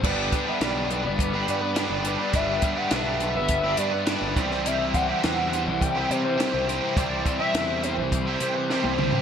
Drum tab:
CC |x---------------|----------------|----------------|----------------|
HH |--x-x-x-x-x-x-x-|x-x-x-x-x-x-x-x-|x-x-x-x-x-x-x-x-|x-x-x-x-x-x-----|
SD |----o-------o---|----o-------o--o|----o-------o---|----o-------o---|
T1 |----------------|----------------|----------------|-------------o--|
T2 |----------------|----------------|----------------|--------------o-|
FT |----------------|----------------|----------------|---------------o|
BD |o-o-----o-------|o-o-----o-----o-|--o-----o-------|o-o-----o-------|